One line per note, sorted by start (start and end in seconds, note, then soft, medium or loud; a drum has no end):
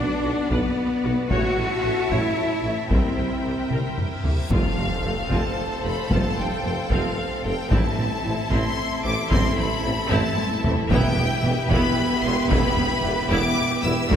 0.00 1.32 B3 medium
0.00 0.49 D4 medium
0.00 0.50 D4 medium
0.00 1.32 F#4 medium
0.00 1.32 B4 medium
0.00 1.27 D5 soft
0.00 1.33 D5 medium
0.00 1.27 F#5 soft
0.23 0.34 B1 medium
0.23 0.32 B1 soft
0.23 0.32 F#4 soft
0.50 0.61 B1 medium
0.50 0.58 B1 medium
0.50 1.31 B3 medium
0.50 1.29 B3 medium
0.50 0.76 B4 medium
0.50 taiko medium
1.04 1.12 B1 medium
1.04 1.15 B1 medium
1.04 1.13 F#4 medium
1.30 1.39 A1 medium
1.30 1.42 A1 medium
1.30 4.51 E4 medium
1.30 2.09 F#4 medium
1.30 2.12 F#4 medium
1.30 2.91 A4 medium
1.30 2.91 C#5 medium
1.30 1.56 C#5 medium
1.30 2.91 E5 medium
1.30 4.28 E5 medium
1.30 2.91 A5 medium
1.30 taiko medium
1.57 1.68 A1 soft
1.57 1.66 A1 medium
1.57 1.66 E4 soft
1.84 1.92 A1 soft
1.84 1.95 A1 soft
1.84 1.92 A4 soft
2.10 2.18 A1 medium
2.10 2.22 A1 medium
2.10 2.91 E4 medium
2.10 2.92 E4 medium
2.10 2.36 C#5 medium
2.10 taiko medium
2.64 2.72 A1 soft
2.64 2.75 A1 soft
2.64 2.72 A4 soft
2.90 2.98 C2 medium
2.90 3.01 C2 medium
2.90 3.70 C4 medium
2.90 3.70 C4 soft
2.90 3.15 A#4 soft
2.90 4.52 A#4 medium
2.90 4.51 C5 medium
2.90 4.22 G5 soft
2.90 4.51 G5 medium
2.90 taiko medium
2.90 reverse cymbal medium
3.16 3.28 C2 soft
3.16 3.25 C2 soft
3.16 3.24 E4 soft
3.44 3.52 C2 soft
3.44 3.55 C2 soft
3.44 3.52 G4 soft
3.70 3.81 C2 soft
3.70 3.79 C2 soft
3.70 3.96 A#4 medium
3.70 taiko mid medium
3.98 taiko low-mid medium
4.24 4.35 C2 soft
4.24 4.33 C2 soft
4.24 4.33 G4 soft
4.24 4.50 E5 medium
4.24 taiko low medium
4.50 4.61 F1 medium
4.50 4.59 F1 medium
4.50 4.58 F2 medium
4.50 4.76 C4 medium
4.50 4.76 F4 medium
4.50 7.67 A4 medium
4.50 7.67 C5 medium
4.50 5.30 F5 medium
4.50 7.69 F5 medium
4.50 taiko loud
4.50 impact medium
4.54 10.89 C4 medium
4.54 7.69 A4 medium
4.54 7.69 C5 medium
4.77 4.88 F1 soft
4.77 4.87 F1 soft
4.77 4.85 F2 soft
4.77 4.86 C4 soft
5.03 5.14 F1 soft
5.03 5.13 F1 soft
5.03 5.11 F2 medium
5.03 5.13 A3 soft
5.03 5.13 C4 soft
5.03 5.15 C4 medium
5.03 5.15 A4 soft
5.30 5.41 F1 medium
5.30 5.39 F1 medium
5.30 5.38 F2 medium
5.30 5.56 C4 medium
5.30 5.56 F4 medium
5.30 5.85 A5 medium
5.30 taiko medium
5.83 5.95 F1 soft
5.83 5.92 F1 soft
5.83 5.91 F2 soft
5.83 5.92 A3 medium
5.83 5.93 C4 medium
5.83 5.93 A4 medium
5.83 6.11 B5 medium
6.10 6.19 F1 medium
6.10 6.22 F1 medium
6.10 6.18 F2 medium
6.10 6.36 C4 medium
6.10 6.36 F4 medium
6.10 6.38 A5 medium
6.10 taiko loud
6.36 6.49 F1 soft
6.36 6.47 F1 soft
6.36 6.44 F2 soft
6.36 6.46 C4 soft
6.36 6.92 G5 medium
6.63 6.75 F1 soft
6.63 6.73 F1 soft
6.63 6.71 F2 medium
6.63 6.72 A3 soft
6.63 6.73 C4 medium
6.63 6.73 C4 soft
6.63 6.74 A4 medium
6.90 7.01 F1 medium
6.90 6.99 F1 medium
6.90 6.98 F2 medium
6.90 7.15 C4 medium
6.90 7.16 F4 medium
6.90 7.45 F5 medium
6.90 taiko medium
7.44 7.55 F1 soft
7.44 7.53 F1 medium
7.44 7.52 F2 soft
7.44 7.53 A3 medium
7.44 7.54 C4 medium
7.44 7.52 C4 medium
7.44 7.54 A4 medium
7.44 7.71 G5 medium
7.71 7.81 A1 medium
7.71 7.79 A1 medium
7.71 7.79 A2 medium
7.71 7.96 C4 medium
7.71 7.96 E4 medium
7.71 10.87 E4 medium
7.71 14.12 E4 medium
7.71 10.87 A4 medium
7.71 10.91 A4 medium
7.71 14.11 E5 medium
7.71 8.51 A5 medium
7.71 taiko loud
7.97 8.08 A1 soft
7.97 8.06 A1 medium
7.97 8.06 A2 medium
7.97 8.06 C4 medium
8.24 8.33 A1 soft
8.24 8.36 A1 medium
8.24 8.33 A2 medium
8.24 8.33 A3 medium
8.24 8.34 C4 medium
8.24 8.33 C4 medium
8.24 8.34 E4 medium
8.50 8.59 A1 medium
8.50 8.62 A1 medium
8.50 8.59 A2 medium
8.50 8.76 C4 medium
8.50 8.76 E4 medium
8.50 9.04 C6 medium
8.50 taiko medium
9.03 9.12 A1 medium
9.03 9.16 A1 medium
9.03 9.13 A2 medium
9.03 9.11 A3 medium
9.03 9.11 C4 medium
9.03 9.14 C4 medium
9.03 9.14 E4 medium
9.03 9.30 D6 medium
9.30 9.39 A1 medium
9.30 9.42 A1 medium
9.30 9.39 A2 medium
9.30 9.55 C4 medium
9.30 9.56 E4 medium
9.30 9.57 C6 loud
9.30 taiko loud
9.56 9.67 A1 medium
9.56 9.69 A1 medium
9.56 9.66 A2 medium
9.56 9.65 C4 medium
9.56 10.10 B5 medium
9.82 9.96 A1 medium
9.82 9.93 A1 medium
9.82 9.92 A2 medium
9.82 9.90 A3 medium
9.82 9.90 C4 medium
9.82 9.95 C4 medium
9.86 9.95 E4 medium
10.10 10.18 A1 medium
10.10 10.22 A1 loud
10.10 10.18 A2 loud
10.10 10.35 C4 medium
10.10 10.35 E4 loud
10.10 10.65 A5 medium
10.10 taiko low-mid medium
10.38 taiko high medium
10.63 10.72 A1 medium
10.63 10.75 A1 medium
10.63 10.71 A2 medium
10.63 10.72 A3 medium
10.63 10.72 C4 medium
10.63 10.75 C4 medium
10.63 10.74 E4 medium
10.63 taiko low medium
10.90 10.98 E1 loud
10.90 11.02 E1 medium
10.90 10.98 E2 medium
10.90 11.16 B3 medium
10.90 14.11 B3 loud
10.90 11.16 E4 medium
10.90 14.07 G4 medium
10.90 14.07 B4 medium
10.90 14.11 B4 loud
10.90 11.67 G5 loud
10.90 taiko loud
11.17 11.25 E1 medium
11.17 11.28 E1 medium
11.17 11.25 E2 medium
11.17 11.25 B3 medium
11.43 11.51 E1 medium
11.43 11.55 E1 medium
11.43 11.51 E2 medium
11.43 11.53 G3 medium
11.43 11.52 B3 medium
11.43 11.55 B3 medium
11.43 11.55 E4 medium
11.69 11.77 E1 loud
11.69 11.81 E1 loud
11.69 11.78 E2 loud
11.69 11.96 B3 medium
11.69 11.96 E4 loud
11.69 12.23 B5 loud
11.69 taiko medium
12.23 12.31 E1 medium
12.23 12.36 E1 medium
12.23 12.32 E2 medium
12.23 12.33 G3 medium
12.23 12.33 B3 medium
12.23 12.35 B3 medium
12.23 12.35 E4 medium
12.23 12.51 C6 loud
12.49 12.58 E1 loud
12.49 12.61 E1 medium
12.49 12.58 E2 loud
12.49 12.76 B3 medium
12.49 12.76 E4 medium
12.49 13.29 B5 loud
12.49 taiko loud
12.76 12.84 E1 medium
12.76 12.88 E1 medium
12.76 12.85 E2 medium
12.76 12.86 B3 medium
13.03 13.11 E1 medium
13.03 13.15 E1 medium
13.03 13.11 E2 medium
13.03 13.13 G3 medium
13.03 13.14 B3 medium
13.03 13.13 B3 medium
13.03 13.14 E4 medium
13.30 13.38 E1 medium
13.30 13.41 E1 medium
13.30 13.38 E2 medium
13.30 13.56 B3 medium
13.30 13.56 E4 loud
13.30 13.83 D6 loud
13.30 taiko medium
13.83 13.95 E1 medium
13.83 13.92 E1 medium
13.83 13.92 E2 medium
13.83 13.93 G3 medium
13.83 13.94 B3 medium
13.83 13.93 B3 medium
13.83 13.94 E4 medium
13.83 14.11 E6 loud
14.10 14.16 D2 medium
14.10 14.16 D2 loud
14.10 14.16 F#3 medium
14.10 14.16 D4 loud
14.10 14.16 F#4 medium
14.10 14.16 A4 medium
14.10 14.16 A4 loud
14.10 14.16 D5 medium
14.10 14.16 F#5 medium
14.10 14.16 B5 loud
14.10 taiko loud